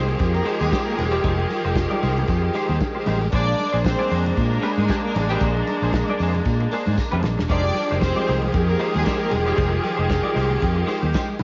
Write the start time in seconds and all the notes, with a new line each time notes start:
Already playing: C2 D#3 F3 G#3 C4 G4 G#4 C5
0.08 muted clean electric guitar stroke, low conga
0.18 F2, muted clean electric guitar stroke, kick, closed hi-hat, tambourine, muted conga
0.33 A#3 A#4, muted clean electric guitar stroke, tambourine, muted conga
0.45 G#3 D#4 G4 C5, open hi-hat, tambourine
0.59 D#2 G#3 D#4 G4 G#4 C5, tambourine, high conga
0.71 G3 G#3 D#4 G4 C5, kick, snare, closed hi-hat, tambourine, muted conga
0.85 A#3 A#4, muted clean electric guitar stroke
0.96 E1 G#3 G#4, muted clean electric guitar stroke, open hi-hat, tambourine, high conga, low conga
1.11 G3 G#3 D#4 G4 C5
1.24 F1 G#3 D#4 G4 C5, kick, closed hi-hat, tambourine, muted conga
1.38 muted clean electric guitar stroke, muted conga
1.50 muted clean electric guitar stroke, open hi-hat, tambourine, high conga
1.65 F1 G#3 D#4 G4 C5, tambourine
1.76 muted clean electric guitar stroke, kick, snare, closed hi-hat, tambourine
1.90 G#3 D#4 G4 D5, muted conga, high conga
2.02 C2 G#3 D#4 G4 C5, open hi-hat, tambourine
2.17 muted clean electric guitar stroke, low conga
2.28 F2, muted clean electric guitar stroke, kick, closed hi-hat, tambourine
2.42 muted clean electric guitar stroke
2.54 G#3 D#4 G4 C5, open hi-hat, tambourine
2.68 D#2 G#3 D#4 G4 C5, tambourine, high conga
2.80 muted clean electric guitar stroke, kick, snare, closed hi-hat, tambourine, muted conga
2.95 G#3 D#4 G4 C5, muted conga
3.06 A1 G#3 D#4 G4 C5, open hi-hat, tambourine, high conga, low conga
3.22 muted clean electric guitar stroke, tambourine
3.32 A#1 G#3 A#3 D4 G#4 C5 D5, kick, closed hi-hat, tambourine, muted conga
3.47 muted clean electric guitar stroke, muted conga
3.59 muted clean electric guitar stroke, open hi-hat, tambourine, high conga
3.73 A#1 A#3 D4 G#4 C5, tambourine
3.85 C4 C5, muted clean electric guitar stroke, kick, snare, closed hi-hat, tambourine
3.99 A#3 D4 G#4 D5, muted conga, high conga
4.10 F2 A#3 D4 G#4 C5, open hi-hat, tambourine
4.25 muted clean electric guitar stroke, low conga
4.36 A#2, muted clean electric guitar stroke, kick, closed hi-hat, tambourine
4.51 A#3 A#4, muted clean electric guitar stroke, tambourine
4.62 A#3 D4 G#4 C5, open hi-hat, tambourine
4.77 G#2 G#3 A#3 D4 G#4 C5, tambourine, high conga
4.88 G3 A#3 D4 G4 G#4 C5, kick, snare, closed hi-hat, tambourine
5.03 A#3 A#4, muted clean electric guitar stroke
5.14 A1 G#3 G#4, muted clean electric guitar stroke, open hi-hat, tambourine, high conga, low conga
5.28 G3 D4 G4 G#4 C5, tambourine
5.32 A#3
5.40 A#1 A#3 D4 G#4 C5, kick, closed hi-hat, tambourine, muted conga
5.57 muted clean electric guitar stroke, muted conga
5.67 muted clean electric guitar stroke, open hi-hat, tambourine, high conga
5.82 A#1 A#3 D4 G#4 C5, tambourine
5.93 muted clean electric guitar stroke, kick, snare, closed hi-hat, tambourine
6.08 A#3 D4 G#4 D5, muted conga, high conga
6.19 F2 A#3 D4 G#4, open hi-hat, tambourine
6.23 C5
6.35 muted clean electric guitar stroke, low conga
6.45 A#2, muted clean electric guitar stroke, kick, closed hi-hat, tambourine, muted conga
6.60 muted clean electric guitar stroke, muted conga
6.71 A#3 D4 G#4 C5, open hi-hat, tambourine
6.86 G#2 A#3 D4 G#4 C5, tambourine, high conga
6.97 muted clean electric guitar stroke, kick, snare, tambourine, muted conga
7.12 F2 A#3 D4 G#4 C5, muted conga, low conga
7.23 A#1, muted clean electric guitar stroke, snare, tambourine, high conga, low conga
7.37 E1, muted clean electric guitar stroke, snare, tambourine
7.48 F1 D#3 F3 G#3 D4 D#4 G4 G#4 C5 D5, kick, closed hi-hat, tambourine, muted conga
7.64 muted clean electric guitar stroke, muted conga
7.74 muted clean electric guitar stroke, open hi-hat, tambourine, high conga
7.91 F1 G#3 D#4 G4 C5, tambourine
8.01 C4 C5, muted clean electric guitar stroke, kick, snare, closed hi-hat, tambourine
8.16 G#3 D#4 G4 D5, high conga
8.27 C2 G#3 D#4 G4 C5, open hi-hat, tambourine
8.42 muted clean electric guitar stroke, low conga
8.52 F2, muted clean electric guitar stroke, kick, closed hi-hat, tambourine, muted conga
8.67 A#3 A#4, muted clean electric guitar stroke, tambourine
8.79 G#3 D#4 G4 C5, open hi-hat, tambourine
8.93 D#2 G#3 D#4 G4 G#4 C5, tambourine, high conga
9.05 G3 G#3 D#4 G4 C5, kick, snare, closed hi-hat, tambourine, muted conga
9.19 A#3 A#4, muted clean electric guitar stroke
9.30 E1 G#3 G#4, muted clean electric guitar stroke, open hi-hat, tambourine, high conga, low conga
9.46 G3 G#3 D#4 G4 C5
9.56 F1 G#3 D#4 G4 C5, kick, closed hi-hat, tambourine
9.71 muted clean electric guitar stroke, muted conga
9.82 muted clean electric guitar stroke, open hi-hat, tambourine, high conga
9.97 F1 G#3 D#4 G4 C5
10.09 muted clean electric guitar stroke, kick, snare, closed hi-hat, tambourine
10.23 G#3 D#4 G4 D5, high conga
10.34 C2 G#3 D#4 G4 C5, open hi-hat, tambourine
10.50 muted clean electric guitar stroke, low conga
10.60 F2, muted clean electric guitar stroke, kick, closed hi-hat, tambourine, muted conga
10.76 muted clean electric guitar stroke, muted conga
10.87 G#3 D#4 G4 C5, open hi-hat, tambourine
11.01 D#2 G#3 D#4 G4 C5, high conga
11.13 G#3 D#4 G4 C5, kick, snare, closed hi-hat, tambourine
11.29 muted clean electric guitar stroke, muted conga
11.39 muted clean electric guitar stroke, open hi-hat, high conga, low conga